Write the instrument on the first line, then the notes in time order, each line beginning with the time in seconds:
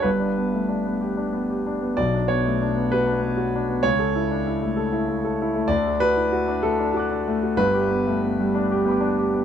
grand piano
0.02 G1 G2 B4
0.20 D4
0.37 B3
0.53 A3
0.68 D4
0.86 B3
1.01 G4
1.17 D4
1.33 B3
1.50 G4
1.67 D4
1.82 B3
1.97 B1 B2 D5
2.14 D4
2.28 B3 C#5
2.46 A3
2.62 D4
2.76 B3
2.92 F#4 B4
3.07 D4
3.22 B3
3.37 F#4
3.55 D4
3.69 B3
3.83 C#2 C#3 C#5
3.99 A4
4.15 E4
4.31 D4
4.47 E4
4.63 A3
4.76 A4
4.93 E4
5.08 A3
5.24 A4
5.42 E4
5.56 A3
5.68 D2 D3 D5
5.87 A3
6.00 F#4 B4
6.16 E4
6.32 F#4
6.48 D4
6.63 A3 A4
6.79 D4
6.94 F#4 A5 D6
6.99 F#6
7.11 D4
7.28 A3
7.43 F#4
7.56 G1 G2 B4
7.74 G4
7.91 B3
8.07 A3
8.22 B3
8.40 G3
8.55 D4
8.71 G4
8.85 B3 G5 B5
8.91 D6
9.01 D4
9.19 G4
9.34 B3